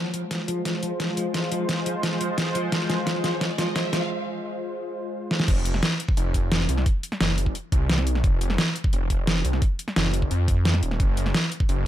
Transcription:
0.00 5.44 G#3 medium
0.00 5.44 F4 medium
0.00 5.44 C5 medium
0.00 riser medium
0.14 0.22 F3 medium
0.14 closed hi-hat medium
0.31 0.39 F3 medium
0.31 kick loud
0.31 snare soft
0.31 closed hi-hat medium
0.48 0.61 F3 loud
0.48 closed hi-hat medium
0.65 0.74 F3 medium
0.65 kick medium
0.65 snare medium
0.65 closed hi-hat medium
0.83 0.91 F3 medium
0.83 closed hi-hat medium
1.00 1.12 F3 loud
1.00 kick loud
1.00 snare medium
1.00 closed hi-hat medium
1.17 1.25 F3 medium
1.17 closed hi-hat medium
1.34 1.43 F3 medium
1.34 kick loud
1.34 snare medium
1.34 closed hi-hat medium
1.52 1.64 F3 loud
1.52 closed hi-hat medium
1.69 1.77 F3 medium
1.69 kick loud
1.69 snare medium
1.69 closed hi-hat medium
1.86 1.94 F3 medium
1.86 closed hi-hat loud
2.03 2.16 F3 loud
2.03 kick loud
2.03 snare medium
2.03 closed hi-hat medium
2.21 2.29 F3 medium
2.21 closed hi-hat medium
2.38 2.46 F3 medium
2.38 kick loud
2.38 snare medium
2.38 closed hi-hat medium
2.55 2.67 F3 loud
2.55 closed hi-hat medium
2.72 2.81 F3 medium
2.72 kick loud
2.72 snare medium
2.72 closed hi-hat medium
2.90 2.98 F3 medium
2.90 snare medium
2.90 closed hi-hat medium
3.07 3.19 F3 medium
3.07 kick medium
3.07 snare medium
3.07 closed hi-hat medium
3.24 3.32 F3 medium
3.24 snare medium
3.24 closed hi-hat medium
3.41 3.50 F3 medium
3.41 kick loud
3.41 snare medium
3.41 closed hi-hat medium
3.58 3.67 F3 medium
3.58 snare medium
3.58 closed hi-hat medium
3.76 3.88 F3 loud
3.76 kick loud
3.76 snare medium
3.76 closed hi-hat medium
3.93 4.01 F3 medium
3.93 snare medium
3.93 closed hi-hat medium
5.31 snare medium
5.40 snare medium
5.48 5.81 F1 loud
5.48 kick loud
5.48 closed hi-hat medium
5.48 crash loud
5.65 closed hi-hat loud
5.74 snare soft
5.83 snare loud
5.83 closed hi-hat medium
6.00 closed hi-hat loud
6.09 kick loud
6.17 6.67 F1 loud
6.17 closed hi-hat medium
6.34 kick medium
6.34 closed hi-hat loud
6.52 snare loud
6.52 closed hi-hat medium
6.69 6.85 C2 loud
6.69 closed hi-hat loud
6.78 snare soft
6.86 kick loud
6.86 closed hi-hat medium
7.03 closed hi-hat loud
7.12 snare medium
7.21 7.54 F#1 medium
7.21 snare loud
7.21 closed hi-hat medium
7.38 closed hi-hat medium
7.46 kick medium
7.55 closed hi-hat medium
7.72 8.23 C2 loud
7.72 kick loud
7.72 closed hi-hat loud
7.90 snare loud
7.90 closed hi-hat medium
7.98 snare medium
8.07 closed hi-hat loud
8.15 snare soft
8.24 8.57 F1 loud
8.24 kick loud
8.24 closed hi-hat medium
8.41 closed hi-hat medium
8.50 snare medium
8.58 snare loud
8.58 closed hi-hat medium
8.76 closed hi-hat medium
8.84 kick loud
8.93 9.43 F1 loud
8.93 closed hi-hat medium
9.10 kick medium
9.10 closed hi-hat medium
9.27 snare loud
9.27 closed hi-hat medium
9.45 9.61 C2 loud
9.45 closed hi-hat medium
9.53 snare soft
9.62 kick loud
9.62 closed hi-hat medium
9.79 closed hi-hat medium
9.88 snare soft
9.96 10.30 F#1 loud
9.96 snare loud
9.96 closed hi-hat medium
10.14 closed hi-hat medium
10.22 kick medium
10.31 10.81 F2 loud
10.31 closed hi-hat medium
10.48 kick loud
10.48 closed hi-hat medium
10.65 snare loud
10.65 closed hi-hat medium
10.74 snare medium
10.83 10.99 D#1 loud
10.83 closed hi-hat medium
10.91 snare soft
11.00 11.33 F#1 loud
11.00 kick loud
11.00 closed hi-hat medium
11.17 closed hi-hat medium
11.26 snare soft
11.34 snare loud
11.34 closed hi-hat medium
11.52 closed hi-hat medium
11.60 kick loud
11.69 11.87 F#1 loud
11.69 closed hi-hat medium

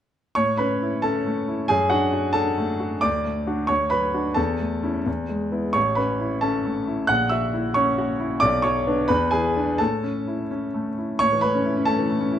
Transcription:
0.35 1.66 A2 medium
0.35 0.58 C#5 medium
0.35 0.59 C#6 medium
0.57 0.95 C#4 soft
0.57 1.01 B4 medium
0.57 1.03 B5 medium
0.82 1.18 E4 soft
1.02 1.39 C#4 soft
1.02 1.65 A4 medium
1.02 1.69 A5 medium
1.26 1.61 A3 soft
1.48 1.70 E4 soft
1.68 2.99 F#2 medium
1.68 1.90 G#4 medium
1.68 1.91 G#5 medium
1.90 2.26 D4 soft
1.90 2.12 F#4 medium
1.90 2.34 F#5 medium
2.13 2.49 F#4 soft
2.33 2.71 D4 soft
2.33 2.99 A4 medium
2.33 3.02 A5 medium
2.58 2.94 A3 soft
2.80 3.03 F#4 soft
3.01 3.68 D2 medium
3.01 3.65 D5 medium
3.01 3.69 D6 medium
3.25 3.60 A3 soft
3.47 3.67 D4 soft
3.47 3.67 F#4 soft
3.67 4.35 D2 medium
3.67 3.90 C#5 medium
3.67 3.91 C#6 medium
3.90 4.28 F#3 soft
3.90 4.34 B4 medium
3.90 4.36 B5 medium
4.14 4.35 D4 soft
4.14 4.35 F#4 soft
4.34 5.04 E2 medium
4.34 5.02 A4 medium
4.34 5.05 A5 medium
4.60 4.97 A3 soft
4.83 5.04 C#4 soft
4.83 5.04 E4 soft
5.06 5.73 E2 soft
5.29 5.66 G#3 soft
5.52 5.73 B3 soft
5.52 5.73 E4 soft
5.73 7.05 A1 medium
5.73 5.96 C#5 medium
5.73 5.97 C#6 medium
5.95 6.34 C#4 soft
5.95 6.39 B4 soft
5.95 6.42 B5 medium
6.20 6.56 E4 soft
6.41 6.79 C#4 soft
6.41 7.05 A4 soft
6.41 7.08 A5 medium
6.65 7.01 A3 soft
6.88 7.10 E4 soft
7.07 8.38 A#1 medium
7.07 7.30 F#5 medium
7.07 7.30 F#6 medium
7.29 7.67 F#4 soft
7.29 7.72 E5 medium
7.29 7.75 E6 medium
7.54 7.89 E4 soft
7.74 8.11 C#4 soft
7.74 8.37 C#5 medium
7.74 8.41 C#6 medium
7.98 8.33 F#4 medium
8.20 8.42 E4 soft
8.40 9.07 B1 medium
8.40 8.62 D5 medium
8.40 8.63 D6 loud
8.62 9.00 F#3 soft
8.62 9.06 C#5 medium
8.62 9.08 C#6 medium
8.87 9.07 B3 soft
8.87 9.07 D4 medium
9.08 9.78 E2 medium
9.08 9.30 B4 medium
9.08 9.32 B5 medium
9.31 9.70 E3 soft
9.31 9.76 G#4 medium
9.31 9.79 G#5 medium
9.56 9.77 B3 soft
9.56 9.78 D4 soft
9.78 11.17 A2 medium
9.78 10.47 A4 medium
9.78 10.50 A5 medium
10.03 10.41 C#4 soft
10.28 10.65 E4 soft
10.51 10.88 C#4 soft
10.74 11.11 A3 soft
10.98 11.21 E4 soft
11.19 12.39 A2 medium
11.19 11.41 C#5 medium
11.19 11.42 C#6 loud
11.32 11.50 E3 soft
11.41 11.61 A3 soft
11.41 11.84 B4 medium
11.41 11.86 B5 medium
11.55 11.72 C#4 soft
11.65 11.83 E4 soft
11.77 11.94 C#4 soft
11.85 12.05 A3 soft
11.85 12.39 A4 medium
11.85 12.39 A5 medium
11.99 12.16 E3 soft
12.10 12.28 A3 soft
12.21 12.38 C#4 soft
12.32 12.39 E4 soft

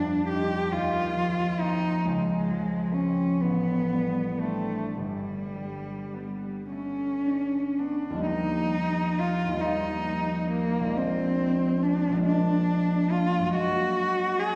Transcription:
0.00 0.76 F2 soft
0.00 2.09 G3 soft
0.00 0.28 D4 medium
0.28 1.59 C4 soft
0.28 2.09 D#4 soft
0.28 0.73 G4 medium
0.72 2.09 D#2 soft
0.72 1.61 F4 medium
1.16 2.49 F3 soft
1.60 2.96 C4 soft
1.60 2.96 C#4 soft
1.60 2.07 D#4 medium
2.05 3.46 C#2 soft
2.05 2.95 G#3 medium
2.50 3.46 F3 soft
2.94 4.42 C4 soft
2.94 3.43 C#4 soft
2.94 3.47 C#4 soft
3.42 5.01 A1 soft
3.42 4.42 B3 medium
3.93 5.54 G3 soft
4.40 4.95 A3 soft
4.40 5.01 C4 soft
4.40 7.25 D4 soft
4.94 8.32 G1 soft
4.94 6.70 G3 soft
5.56 8.16 G3 soft
6.13 7.78 B3 soft
6.71 8.32 A3 soft
6.71 7.80 C#4 soft
7.26 8.32 D4 soft
7.78 8.32 B3 soft
7.78 8.26 D4 soft
8.10 9.46 D#2 soft
8.10 9.50 F3 soft
8.17 9.53 G3 soft
8.21 9.57 A#3 soft
8.21 9.60 D#4 soft
8.26 9.21 D#4 medium
9.19 9.63 F4 medium
9.47 10.92 D#2 soft
9.47 10.83 F3 soft
9.54 13.44 G3 soft
9.58 10.90 A#3 soft
9.58 10.99 D#4 soft
9.58 10.51 D#4 medium
10.52 10.99 A#3 medium
10.80 12.08 A#1 soft
10.84 12.12 F3 soft
10.84 12.15 G#3 soft
10.91 12.18 A#3 soft
10.91 12.22 D4 soft
10.97 11.84 C4 medium
11.83 12.25 D4 medium
12.09 13.51 A#1 soft
12.09 13.52 F3 soft
12.16 13.45 G#3 soft
12.16 13.48 A#3 soft
12.23 13.58 D4 soft
12.23 13.13 D4 medium
13.12 13.54 F4 medium
13.39 14.55 F#2 soft
13.39 14.55 F#3 soft
13.46 14.55 G#3 soft
13.46 14.55 A#3 soft
13.53 14.55 C#4 soft
13.53 14.41 F#4 medium
14.39 14.55 G#4 medium

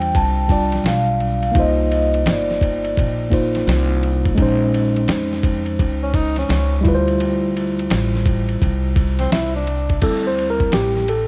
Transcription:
0.00 0.10 E2 medium
0.00 0.44 G3 medium
0.00 0.45 D4 medium
0.00 0.47 F4 medium
0.00 0.51 C5 medium
0.00 0.17 G5 loud
0.00 ride soft
0.15 0.82 C2 medium
0.15 0.81 A5 loud
0.15 kick medium
0.15 ride medium
0.48 1.54 G3 soft
0.48 1.55 D4 soft
0.48 1.55 F4 soft
0.48 kick loud
0.48 ride medium
0.52 1.56 D5 medium
0.72 snare soft
0.72 ride soft
0.84 1.51 B1 medium
0.84 1.59 F5 medium
0.84 snare loud
0.84 hi-hat pedal medium
0.84 ride medium
1.20 ride soft
1.43 ride soft
1.52 2.22 C2 loud
1.52 3.26 A#3 medium
1.52 3.27 D#4 medium
1.52 kick loud
1.52 ride medium
1.56 3.29 F4 medium
1.56 3.30 C5 medium
1.56 2.24 D#5 medium
1.92 ride medium
2.14 ride soft
2.26 2.93 G1 medium
2.26 snare loud
2.26 hi-hat pedal medium
2.26 ride medium
2.30 3.30 D5 medium
2.51 snare soft
2.61 kick medium
2.61 ride medium
2.85 ride soft
2.97 3.64 A#1 medium
2.97 kick medium
2.97 ride medium
3.30 4.37 A#3 medium
3.30 4.37 D#4 soft
3.30 4.38 F4 medium
3.30 4.39 C5 medium
3.30 kick medium
3.30 ride medium
3.55 snare soft
3.55 ride soft
3.67 4.34 C2 loud
3.67 snare medium
3.67 hi-hat pedal medium
3.67 ride medium
4.03 ride soft
4.25 kick medium
4.25 ride soft
4.35 5.05 A#1 loud
4.35 6.79 G#3 medium
4.35 6.81 C#4 medium
4.35 kick loud
4.35 ride medium
4.40 6.82 D#4 medium
4.40 6.83 C5 medium
4.74 ride medium
4.96 ride soft
5.08 5.75 F2 medium
5.08 snare loud
5.08 hi-hat pedal medium
5.08 ride medium
5.33 snare soft
5.43 kick medium
5.43 ride medium
5.66 ride soft
5.79 6.46 C#2 medium
5.79 kick medium
5.79 ride medium
6.03 6.16 C#4 medium
6.14 6.36 D#4 medium
6.14 kick medium
6.14 ride medium
6.36 6.83 C#4 medium
6.36 snare soft
6.36 ride soft
6.49 6.83 C#2 medium
6.49 snare medium
6.49 hi-hat pedal medium
6.49 ride medium
6.81 7.87 D2 loud
6.81 9.61 G3 medium
6.81 9.62 E4 medium
6.81 kick loud
6.85 9.64 F4 medium
6.85 6.95 B4 medium
6.85 ride medium
6.95 9.68 C5 medium
7.08 ride soft
7.20 ride medium
7.57 ride medium
7.79 ride soft
7.90 8.58 A1 loud
7.90 snare loud
7.90 hi-hat pedal medium
7.90 ride medium
8.15 snare soft
8.26 kick medium
8.26 ride medium
8.49 ride soft
8.62 9.29 C2 medium
8.62 kick medium
8.62 ride medium
8.96 kick loud
8.96 ride medium
9.19 9.31 C4 medium
9.19 snare soft
9.19 ride soft
9.32 9.99 C2 medium
9.32 9.54 E4 medium
9.32 snare loud
9.32 hi-hat pedal medium
9.32 ride medium
9.56 10.01 D4 medium
9.67 ride soft
9.89 kick medium
9.89 ride soft
10.02 10.69 D2 medium
10.02 11.04 G3 soft
10.02 11.04 C4 soft
10.02 11.05 E4 medium
10.02 10.25 A4 medium
10.02 kick loud
10.02 crash medium
10.02 ride medium
10.27 10.48 C5 medium
10.39 ride medium
10.50 10.74 A#4 medium
10.60 kick medium
10.60 ride soft
10.72 11.28 A1 medium
10.72 11.10 G4 medium
10.72 snare loud
10.72 hi-hat pedal medium
10.72 ride medium
10.97 snare soft
11.08 11.28 A4 medium
11.08 ride medium

